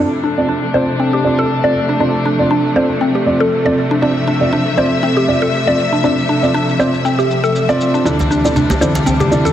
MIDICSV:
0, 0, Header, 1, 6, 480
1, 0, Start_track
1, 0, Key_signature, -1, "minor"
1, 0, Tempo, 504202
1, 1908, Time_signature, 4, 2, 24, 8
1, 9070, End_track
2, 0, Start_track
2, 0, Title_t, "Felt piano"
2, 0, Program_c, 0, 0
2, 358, Note_on_c, 0, 60, 70
2, 358, Note_on_c, 0, 65, 61
2, 359, Note_on_c, 0, 74, 78
2, 422, Note_off_c, 0, 60, 0
2, 422, Note_off_c, 0, 65, 0
2, 423, Note_off_c, 0, 74, 0
2, 705, Note_on_c, 0, 65, 76
2, 706, Note_on_c, 0, 60, 84
2, 706, Note_on_c, 0, 74, 92
2, 784, Note_off_c, 0, 65, 0
2, 785, Note_off_c, 0, 60, 0
2, 785, Note_off_c, 0, 74, 0
2, 1185, Note_on_c, 0, 65, 65
2, 1185, Note_on_c, 0, 74, 79
2, 1187, Note_on_c, 0, 60, 70
2, 1311, Note_off_c, 0, 60, 0
2, 1311, Note_off_c, 0, 65, 0
2, 1311, Note_off_c, 0, 74, 0
2, 1558, Note_on_c, 0, 60, 72
2, 1558, Note_on_c, 0, 74, 78
2, 1559, Note_on_c, 0, 65, 62
2, 1622, Note_off_c, 0, 60, 0
2, 1623, Note_off_c, 0, 65, 0
2, 1623, Note_off_c, 0, 74, 0
2, 1904, Note_on_c, 0, 60, 69
2, 1905, Note_on_c, 0, 74, 79
2, 1906, Note_on_c, 0, 65, 68
2, 1984, Note_off_c, 0, 60, 0
2, 1984, Note_off_c, 0, 65, 0
2, 1984, Note_off_c, 0, 74, 0
2, 2278, Note_on_c, 0, 65, 64
2, 2278, Note_on_c, 0, 74, 77
2, 2279, Note_on_c, 0, 60, 70
2, 2342, Note_off_c, 0, 65, 0
2, 2342, Note_off_c, 0, 74, 0
2, 2343, Note_off_c, 0, 60, 0
2, 2626, Note_on_c, 0, 60, 86
2, 2626, Note_on_c, 0, 74, 91
2, 2627, Note_on_c, 0, 65, 81
2, 2704, Note_off_c, 0, 60, 0
2, 2704, Note_off_c, 0, 74, 0
2, 2705, Note_off_c, 0, 65, 0
2, 3107, Note_on_c, 0, 60, 73
2, 3107, Note_on_c, 0, 65, 66
2, 3107, Note_on_c, 0, 74, 79
2, 3232, Note_off_c, 0, 60, 0
2, 3232, Note_off_c, 0, 65, 0
2, 3232, Note_off_c, 0, 74, 0
2, 3478, Note_on_c, 0, 74, 77
2, 3479, Note_on_c, 0, 60, 68
2, 3479, Note_on_c, 0, 65, 64
2, 3542, Note_off_c, 0, 74, 0
2, 3543, Note_off_c, 0, 60, 0
2, 3543, Note_off_c, 0, 65, 0
2, 3827, Note_on_c, 0, 74, 82
2, 3828, Note_on_c, 0, 60, 75
2, 3828, Note_on_c, 0, 65, 66
2, 3905, Note_off_c, 0, 74, 0
2, 3906, Note_off_c, 0, 60, 0
2, 3906, Note_off_c, 0, 65, 0
2, 4198, Note_on_c, 0, 60, 69
2, 4198, Note_on_c, 0, 65, 63
2, 4198, Note_on_c, 0, 74, 78
2, 4262, Note_off_c, 0, 60, 0
2, 4262, Note_off_c, 0, 65, 0
2, 4262, Note_off_c, 0, 74, 0
2, 4545, Note_on_c, 0, 60, 85
2, 4546, Note_on_c, 0, 65, 79
2, 4546, Note_on_c, 0, 74, 92
2, 4624, Note_off_c, 0, 60, 0
2, 4624, Note_off_c, 0, 74, 0
2, 4625, Note_off_c, 0, 65, 0
2, 5028, Note_on_c, 0, 60, 73
2, 5028, Note_on_c, 0, 65, 68
2, 5029, Note_on_c, 0, 74, 82
2, 5152, Note_off_c, 0, 60, 0
2, 5152, Note_off_c, 0, 65, 0
2, 5153, Note_off_c, 0, 74, 0
2, 5400, Note_on_c, 0, 65, 65
2, 5401, Note_on_c, 0, 60, 70
2, 5401, Note_on_c, 0, 74, 76
2, 5464, Note_off_c, 0, 60, 0
2, 5464, Note_off_c, 0, 65, 0
2, 5464, Note_off_c, 0, 74, 0
2, 5749, Note_on_c, 0, 60, 77
2, 5749, Note_on_c, 0, 74, 82
2, 5750, Note_on_c, 0, 65, 68
2, 5826, Note_off_c, 0, 60, 0
2, 5826, Note_off_c, 0, 65, 0
2, 5826, Note_off_c, 0, 74, 0
2, 6120, Note_on_c, 0, 60, 70
2, 6120, Note_on_c, 0, 65, 66
2, 6120, Note_on_c, 0, 74, 79
2, 6183, Note_off_c, 0, 60, 0
2, 6183, Note_off_c, 0, 74, 0
2, 6184, Note_off_c, 0, 65, 0
2, 6466, Note_on_c, 0, 65, 75
2, 6468, Note_on_c, 0, 60, 86
2, 6468, Note_on_c, 0, 74, 88
2, 6545, Note_off_c, 0, 60, 0
2, 6545, Note_off_c, 0, 65, 0
2, 6545, Note_off_c, 0, 74, 0
2, 7321, Note_on_c, 0, 60, 88
2, 7322, Note_on_c, 0, 65, 78
2, 7322, Note_on_c, 0, 74, 98
2, 7642, Note_off_c, 0, 60, 0
2, 7643, Note_off_c, 0, 65, 0
2, 7643, Note_off_c, 0, 74, 0
2, 7667, Note_on_c, 0, 60, 66
2, 7667, Note_on_c, 0, 64, 71
2, 7667, Note_on_c, 0, 74, 84
2, 7668, Note_on_c, 0, 50, 75
2, 7745, Note_off_c, 0, 50, 0
2, 7745, Note_off_c, 0, 60, 0
2, 7745, Note_off_c, 0, 64, 0
2, 7745, Note_off_c, 0, 74, 0
2, 8041, Note_on_c, 0, 50, 70
2, 8041, Note_on_c, 0, 64, 62
2, 8042, Note_on_c, 0, 60, 64
2, 8042, Note_on_c, 0, 74, 74
2, 8104, Note_off_c, 0, 50, 0
2, 8104, Note_off_c, 0, 60, 0
2, 8104, Note_off_c, 0, 64, 0
2, 8104, Note_off_c, 0, 74, 0
2, 8387, Note_on_c, 0, 64, 77
2, 8388, Note_on_c, 0, 50, 83
2, 8388, Note_on_c, 0, 60, 79
2, 8388, Note_on_c, 0, 74, 94
2, 8465, Note_off_c, 0, 50, 0
2, 8465, Note_off_c, 0, 64, 0
2, 8466, Note_off_c, 0, 60, 0
2, 8466, Note_off_c, 0, 74, 0
2, 8867, Note_on_c, 0, 60, 66
2, 8867, Note_on_c, 0, 64, 67
2, 8868, Note_on_c, 0, 50, 69
2, 8868, Note_on_c, 0, 74, 79
2, 8992, Note_off_c, 0, 50, 0
2, 8992, Note_off_c, 0, 60, 0
2, 8992, Note_off_c, 0, 64, 0
2, 8992, Note_off_c, 0, 74, 0
2, 9070, End_track
3, 0, Start_track
3, 0, Title_t, "Synth pluck"
3, 0, Program_c, 1, 84
3, 0, Note_on_c, 1, 62, 82
3, 106, Note_off_c, 1, 62, 0
3, 225, Note_on_c, 1, 62, 77
3, 352, Note_off_c, 1, 62, 0
3, 464, Note_on_c, 1, 62, 85
3, 585, Note_off_c, 1, 62, 0
3, 706, Note_on_c, 1, 72, 76
3, 778, Note_off_c, 1, 72, 0
3, 948, Note_on_c, 1, 60, 79
3, 1067, Note_off_c, 1, 60, 0
3, 1078, Note_on_c, 1, 67, 75
3, 1182, Note_off_c, 1, 67, 0
3, 1320, Note_on_c, 1, 69, 100
3, 1417, Note_off_c, 1, 69, 0
3, 1560, Note_on_c, 1, 74, 73
3, 1662, Note_off_c, 1, 74, 0
3, 1800, Note_on_c, 1, 62, 69
3, 1858, Note_off_c, 1, 62, 0
3, 1908, Note_on_c, 1, 62, 80
3, 2027, Note_off_c, 1, 62, 0
3, 2147, Note_on_c, 1, 62, 74
3, 2273, Note_off_c, 1, 62, 0
3, 2386, Note_on_c, 1, 62, 83
3, 2506, Note_off_c, 1, 62, 0
3, 2628, Note_on_c, 1, 72, 76
3, 2699, Note_off_c, 1, 72, 0
3, 2866, Note_on_c, 1, 60, 81
3, 2985, Note_off_c, 1, 60, 0
3, 3000, Note_on_c, 1, 67, 75
3, 3102, Note_off_c, 1, 67, 0
3, 3241, Note_on_c, 1, 69, 99
3, 3337, Note_off_c, 1, 69, 0
3, 3481, Note_on_c, 1, 74, 74
3, 3583, Note_off_c, 1, 74, 0
3, 3723, Note_on_c, 1, 62, 69
3, 3780, Note_off_c, 1, 62, 0
3, 3831, Note_on_c, 1, 62, 79
3, 3948, Note_off_c, 1, 62, 0
3, 4070, Note_on_c, 1, 62, 76
3, 4194, Note_off_c, 1, 62, 0
3, 4309, Note_on_c, 1, 62, 87
3, 4427, Note_off_c, 1, 62, 0
3, 4549, Note_on_c, 1, 72, 72
3, 4619, Note_off_c, 1, 72, 0
3, 4788, Note_on_c, 1, 60, 82
3, 4907, Note_off_c, 1, 60, 0
3, 4919, Note_on_c, 1, 67, 75
3, 5022, Note_off_c, 1, 67, 0
3, 5160, Note_on_c, 1, 69, 101
3, 5257, Note_off_c, 1, 69, 0
3, 5402, Note_on_c, 1, 74, 74
3, 5503, Note_off_c, 1, 74, 0
3, 5641, Note_on_c, 1, 62, 70
3, 5698, Note_off_c, 1, 62, 0
3, 5748, Note_on_c, 1, 62, 78
3, 5867, Note_off_c, 1, 62, 0
3, 5989, Note_on_c, 1, 62, 73
3, 6114, Note_off_c, 1, 62, 0
3, 6230, Note_on_c, 1, 62, 90
3, 6348, Note_off_c, 1, 62, 0
3, 6470, Note_on_c, 1, 72, 74
3, 6540, Note_off_c, 1, 72, 0
3, 6712, Note_on_c, 1, 60, 81
3, 6829, Note_off_c, 1, 60, 0
3, 6841, Note_on_c, 1, 67, 75
3, 6943, Note_off_c, 1, 67, 0
3, 7080, Note_on_c, 1, 69, 101
3, 7177, Note_off_c, 1, 69, 0
3, 7321, Note_on_c, 1, 74, 75
3, 7423, Note_off_c, 1, 74, 0
3, 7560, Note_on_c, 1, 62, 68
3, 7618, Note_off_c, 1, 62, 0
3, 7668, Note_on_c, 1, 62, 81
3, 7787, Note_off_c, 1, 62, 0
3, 7907, Note_on_c, 1, 62, 74
3, 8033, Note_off_c, 1, 62, 0
3, 8150, Note_on_c, 1, 62, 82
3, 8268, Note_off_c, 1, 62, 0
3, 8389, Note_on_c, 1, 72, 72
3, 8460, Note_off_c, 1, 72, 0
3, 8628, Note_on_c, 1, 60, 84
3, 8747, Note_off_c, 1, 60, 0
3, 8762, Note_on_c, 1, 67, 77
3, 8863, Note_off_c, 1, 67, 0
3, 8998, Note_on_c, 1, 69, 104
3, 9070, Note_off_c, 1, 69, 0
3, 9070, End_track
4, 0, Start_track
4, 0, Title_t, "String section"
4, 0, Program_c, 2, 48
4, 0, Note_on_c, 2, 48, 72
4, 0, Note_on_c, 2, 53, 66
4, 0, Note_on_c, 2, 57, 68
4, 0, Note_on_c, 2, 62, 79
4, 3787, Note_off_c, 2, 62, 0
4, 3827, Note_on_c, 2, 76, 80
4, 7625, Note_off_c, 2, 57, 0
4, 7627, Note_off_c, 2, 48, 0
4, 7627, Note_off_c, 2, 53, 0
4, 7629, Note_off_c, 2, 76, 0
4, 7672, Note_on_c, 2, 38, 72
4, 7672, Note_on_c, 2, 52, 67
4, 7673, Note_on_c, 2, 48, 65
4, 7673, Note_on_c, 2, 62, 81
4, 7674, Note_on_c, 2, 55, 68
4, 9070, Note_off_c, 2, 38, 0
4, 9070, Note_off_c, 2, 48, 0
4, 9070, Note_off_c, 2, 52, 0
4, 9070, Note_off_c, 2, 55, 0
4, 9070, Note_off_c, 2, 62, 0
4, 9070, End_track
5, 0, Start_track
5, 0, Title_t, "Djembe"
5, 7805, Note_on_c, 9, 63, 61
5, 7900, Note_off_c, 9, 63, 0
5, 8282, Note_on_c, 9, 63, 88
5, 8377, Note_off_c, 9, 63, 0
5, 8523, Note_on_c, 9, 62, 65
5, 8618, Note_off_c, 9, 62, 0
5, 8633, Note_on_c, 9, 63, 67
5, 8728, Note_off_c, 9, 63, 0
5, 9070, End_track
6, 0, Start_track
6, 0, Title_t, "Drums"
6, 227, Note_on_c, 9, 82, 50
6, 322, Note_off_c, 9, 82, 0
6, 360, Note_on_c, 9, 82, 86
6, 456, Note_off_c, 9, 82, 0
6, 466, Note_on_c, 9, 82, 47
6, 561, Note_off_c, 9, 82, 0
6, 600, Note_on_c, 9, 82, 51
6, 695, Note_off_c, 9, 82, 0
6, 708, Note_on_c, 9, 82, 90
6, 803, Note_off_c, 9, 82, 0
6, 839, Note_on_c, 9, 82, 50
6, 934, Note_off_c, 9, 82, 0
6, 1667, Note_on_c, 9, 82, 90
6, 1762, Note_off_c, 9, 82, 0
6, 1908, Note_on_c, 9, 82, 92
6, 2003, Note_off_c, 9, 82, 0
6, 2282, Note_on_c, 9, 82, 92
6, 2377, Note_off_c, 9, 82, 0
6, 2392, Note_on_c, 9, 82, 51
6, 2488, Note_off_c, 9, 82, 0
6, 2523, Note_on_c, 9, 82, 53
6, 2618, Note_off_c, 9, 82, 0
6, 2630, Note_on_c, 9, 82, 97
6, 2726, Note_off_c, 9, 82, 0
6, 2764, Note_on_c, 9, 82, 51
6, 2859, Note_off_c, 9, 82, 0
6, 2870, Note_on_c, 9, 82, 88
6, 2965, Note_off_c, 9, 82, 0
6, 3004, Note_on_c, 9, 82, 50
6, 3099, Note_off_c, 9, 82, 0
6, 3113, Note_on_c, 9, 82, 52
6, 3209, Note_off_c, 9, 82, 0
6, 3244, Note_on_c, 9, 82, 55
6, 3339, Note_off_c, 9, 82, 0
6, 3352, Note_on_c, 9, 82, 89
6, 3447, Note_off_c, 9, 82, 0
6, 3484, Note_on_c, 9, 82, 53
6, 3579, Note_off_c, 9, 82, 0
6, 3591, Note_on_c, 9, 82, 91
6, 3686, Note_off_c, 9, 82, 0
6, 3832, Note_on_c, 9, 82, 93
6, 3928, Note_off_c, 9, 82, 0
6, 3965, Note_on_c, 9, 82, 54
6, 4060, Note_off_c, 9, 82, 0
6, 4073, Note_on_c, 9, 82, 50
6, 4168, Note_off_c, 9, 82, 0
6, 4205, Note_on_c, 9, 82, 96
6, 4300, Note_off_c, 9, 82, 0
6, 4315, Note_on_c, 9, 82, 49
6, 4410, Note_off_c, 9, 82, 0
6, 4445, Note_on_c, 9, 82, 54
6, 4541, Note_off_c, 9, 82, 0
6, 4550, Note_on_c, 9, 82, 94
6, 4645, Note_off_c, 9, 82, 0
6, 4683, Note_on_c, 9, 82, 52
6, 4778, Note_off_c, 9, 82, 0
6, 4792, Note_on_c, 9, 82, 96
6, 4888, Note_off_c, 9, 82, 0
6, 4923, Note_on_c, 9, 82, 54
6, 5018, Note_off_c, 9, 82, 0
6, 5030, Note_on_c, 9, 82, 53
6, 5126, Note_off_c, 9, 82, 0
6, 5165, Note_on_c, 9, 82, 52
6, 5260, Note_off_c, 9, 82, 0
6, 5271, Note_on_c, 9, 82, 87
6, 5366, Note_off_c, 9, 82, 0
6, 5402, Note_on_c, 9, 82, 51
6, 5497, Note_off_c, 9, 82, 0
6, 5511, Note_on_c, 9, 82, 89
6, 5607, Note_off_c, 9, 82, 0
6, 5644, Note_on_c, 9, 82, 53
6, 5740, Note_off_c, 9, 82, 0
6, 5754, Note_on_c, 9, 82, 86
6, 5849, Note_off_c, 9, 82, 0
6, 5886, Note_on_c, 9, 82, 52
6, 5981, Note_off_c, 9, 82, 0
6, 5996, Note_on_c, 9, 82, 49
6, 6091, Note_off_c, 9, 82, 0
6, 6127, Note_on_c, 9, 82, 94
6, 6223, Note_off_c, 9, 82, 0
6, 6234, Note_on_c, 9, 82, 49
6, 6329, Note_off_c, 9, 82, 0
6, 6367, Note_on_c, 9, 82, 52
6, 6462, Note_off_c, 9, 82, 0
6, 6475, Note_on_c, 9, 82, 95
6, 6570, Note_off_c, 9, 82, 0
6, 6607, Note_on_c, 9, 82, 51
6, 6702, Note_off_c, 9, 82, 0
6, 6715, Note_on_c, 9, 82, 88
6, 6810, Note_off_c, 9, 82, 0
6, 6846, Note_on_c, 9, 82, 52
6, 6942, Note_off_c, 9, 82, 0
6, 6955, Note_on_c, 9, 82, 52
6, 7050, Note_off_c, 9, 82, 0
6, 7087, Note_on_c, 9, 82, 54
6, 7183, Note_off_c, 9, 82, 0
6, 7192, Note_on_c, 9, 82, 87
6, 7287, Note_off_c, 9, 82, 0
6, 7326, Note_on_c, 9, 82, 50
6, 7421, Note_off_c, 9, 82, 0
6, 7434, Note_on_c, 9, 82, 90
6, 7529, Note_off_c, 9, 82, 0
6, 7565, Note_on_c, 9, 82, 52
6, 7660, Note_off_c, 9, 82, 0
6, 7675, Note_on_c, 9, 82, 85
6, 7770, Note_off_c, 9, 82, 0
6, 7799, Note_on_c, 9, 62, 46
6, 7808, Note_on_c, 9, 82, 50
6, 7894, Note_off_c, 9, 62, 0
6, 7903, Note_off_c, 9, 82, 0
6, 7915, Note_on_c, 9, 82, 51
6, 8010, Note_off_c, 9, 82, 0
6, 8039, Note_on_c, 9, 62, 36
6, 8047, Note_on_c, 9, 82, 93
6, 8135, Note_off_c, 9, 62, 0
6, 8142, Note_off_c, 9, 82, 0
6, 8151, Note_on_c, 9, 64, 88
6, 8152, Note_on_c, 9, 82, 51
6, 8246, Note_off_c, 9, 64, 0
6, 8247, Note_off_c, 9, 82, 0
6, 8281, Note_on_c, 9, 62, 41
6, 8286, Note_on_c, 9, 82, 51
6, 8377, Note_off_c, 9, 62, 0
6, 8381, Note_off_c, 9, 82, 0
6, 8394, Note_on_c, 9, 82, 93
6, 8396, Note_on_c, 9, 63, 92
6, 8490, Note_off_c, 9, 82, 0
6, 8492, Note_off_c, 9, 63, 0
6, 8524, Note_on_c, 9, 82, 51
6, 8619, Note_off_c, 9, 82, 0
6, 8629, Note_on_c, 9, 62, 36
6, 8631, Note_on_c, 9, 82, 86
6, 8724, Note_off_c, 9, 62, 0
6, 8727, Note_off_c, 9, 82, 0
6, 8761, Note_on_c, 9, 64, 87
6, 8764, Note_on_c, 9, 82, 47
6, 8856, Note_off_c, 9, 64, 0
6, 8859, Note_off_c, 9, 82, 0
6, 8872, Note_on_c, 9, 82, 47
6, 8877, Note_on_c, 9, 62, 45
6, 8967, Note_off_c, 9, 82, 0
6, 8972, Note_off_c, 9, 62, 0
6, 9006, Note_on_c, 9, 63, 60
6, 9007, Note_on_c, 9, 82, 53
6, 9070, Note_off_c, 9, 63, 0
6, 9070, Note_off_c, 9, 82, 0
6, 9070, End_track
0, 0, End_of_file